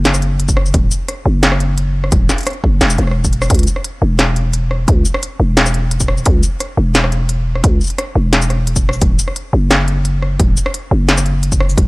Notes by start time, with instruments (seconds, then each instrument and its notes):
Already playing: 808-style bass F#1
0.05 snare, closed hi-hat
0.14 cross-stick, shaker
0.22 closed hi-hat
0.40 closed hi-hat
0.48 kick, shaker
0.57 cross-stick
0.66 shaker
0.74 808-style bass D1, kick, closed hi-hat
0.91 shaker
1.08 cross-stick, closed hi-hat
1.26 808-style bass F#1
1.43 snare, closed hi-hat
1.52 cross-stick
1.60 closed hi-hat
1.78 closed hi-hat
2.04 cross-stick
2.12 808-style bass D1, kick, closed hi-hat
2.29 snare, shaker
2.38 closed hi-hat
2.41 closed hi-hat
2.43 closed hi-hat
2.46 cross-stick, closed hi-hat
2.48 closed hi-hat
2.64 808-style bass F#1, kick
2.81 808-style bass E1, snare, closed hi-hat
2.90 shaker
2.98 808-style bass E1, cross-stick, closed hi-hat
3.03 cross-stick
3.07 cross-stick
3.11 cross-stick
3.24 kick, shaker
3.33 closed hi-hat
3.42 cross-stick, shaker
3.50 808-style bass C#2, kick, closed hi-hat
3.55 closed hi-hat
3.59 closed hi-hat
3.63 closed hi-hat, shaker
3.76 cross-stick
3.84 closed hi-hat
4.02 808-style bass E1
4.19 cross-stick, snare, closed hi-hat
4.36 closed hi-hat
4.53 closed hi-hat
4.71 cross-stick
4.88 808-style bass C#2, kick, closed hi-hat
5.05 shaker
5.14 cross-stick
5.23 closed hi-hat
5.40 808-style bass E1
5.57 snare, closed hi-hat
5.66 cross-stick, shaker
5.74 closed hi-hat
5.91 closed hi-hat
6.00 kick, shaker
6.08 cross-stick
6.17 shaker
6.26 808-style bass C#2, kick, closed hi-hat
6.43 shaker
6.60 cross-stick, closed hi-hat
6.77 808-style bass E1
6.95 snare, closed hi-hat
7.04 cross-stick
7.12 closed hi-hat
7.29 closed hi-hat
7.55 cross-stick
7.64 808-style bass C#2, kick, closed hi-hat
7.81 shaker
7.84 shaker
7.87 closed hi-hat, shaker
7.98 cross-stick, closed hi-hat
8.15 808-style bass E1
8.33 snare, closed hi-hat
8.42 shaker
8.50 cross-stick, closed hi-hat
8.67 closed hi-hat
8.76 kick, shaker
8.89 cross-stick
8.93 shaker
9.01 808-style bass D1, kick, closed hi-hat
9.19 shaker
9.28 cross-stick
9.36 closed hi-hat
9.53 808-style bass F#1
9.71 cross-stick, snare, closed hi-hat
9.88 closed hi-hat
10.05 closed hi-hat
10.22 cross-stick
10.40 808-style bass D1, kick, closed hi-hat
10.57 shaker
10.66 cross-stick
10.74 closed hi-hat
10.91 808-style bass F#1
11.09 snare, closed hi-hat
11.18 cross-stick, shaker
11.26 closed hi-hat
11.43 closed hi-hat
11.52 kick, shaker
11.60 cross-stick
11.69 shaker
11.78 808-style bass D1, kick, closed hi-hat